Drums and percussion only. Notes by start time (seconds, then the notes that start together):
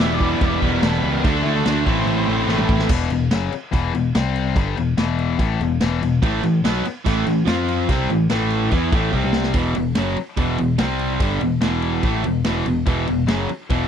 0.20 kick
0.41 kick, crash
0.62 kick
0.83 snare, crash
1.24 kick, crash
1.35 snare
1.66 snare, crash
1.86 kick
2.07 crash
2.48 snare
2.58 mid tom
2.69 kick
2.79 snare
2.89 kick, crash
3.10 crash
3.31 snare, crash
3.52 crash
3.73 kick, crash
3.95 crash
4.15 snare, crash
4.36 crash
4.56 kick, crash
4.77 crash
4.98 snare, crash
5.19 crash
5.39 kick, crash
5.61 crash
5.81 snare, crash
6.02 crash
6.23 kick, crash
6.43 crash
6.65 snare, crash
6.85 crash
7.06 kick, crash
7.26 crash
7.47 snare, crash
7.68 crash
7.89 kick, crash
8.10 crash
8.30 snare, crash
8.50 crash
8.71 kick, crash
8.92 kick, crash
9.13 kick
9.23 mid tom
9.33 snare
9.43 snare
9.54 kick, ride
9.75 ride
9.95 snare, ride
10.17 ride
10.37 kick, ride
10.58 ride
10.78 snare, ride
10.99 ride
11.20 kick, ride
11.41 ride
11.61 snare, ride
11.82 ride
12.03 kick, ride
12.24 ride
12.44 snare, ride
12.66 ride
12.86 kick, ride
13.07 ride
13.28 snare, ride
13.49 ride
13.70 kick, ride